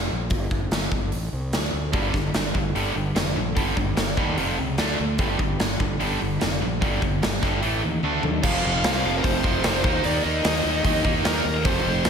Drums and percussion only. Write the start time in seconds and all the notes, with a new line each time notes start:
0.30 kick, open hi-hat
0.51 kick
0.71 snare, open hi-hat
0.92 kick
1.12 open hi-hat
1.53 snare, open hi-hat
1.93 kick, open hi-hat
2.14 kick, snare
2.34 snare, open hi-hat
2.55 kick
2.76 open hi-hat
3.16 snare, open hi-hat
3.57 kick, open hi-hat
3.77 kick
3.97 snare, open hi-hat
4.17 kick
4.38 open hi-hat
4.78 snare, open hi-hat
5.18 kick, open hi-hat
5.39 kick
5.60 snare, open hi-hat
5.80 kick
6.00 open hi-hat
6.41 snare, open hi-hat
6.82 kick, open hi-hat
7.02 kick
7.23 snare, open hi-hat
7.43 kick, snare
7.63 open hi-hat
8.03 high tom
8.23 floor tom
8.43 kick, crash
8.84 snare, open hi-hat
9.24 kick, open hi-hat
9.44 kick
9.64 snare, open hi-hat
9.84 kick
10.04 open hi-hat
10.44 snare, open hi-hat
10.85 kick, open hi-hat
11.05 kick
11.25 snare, open hi-hat
11.65 kick, open hi-hat
12.05 snare, open hi-hat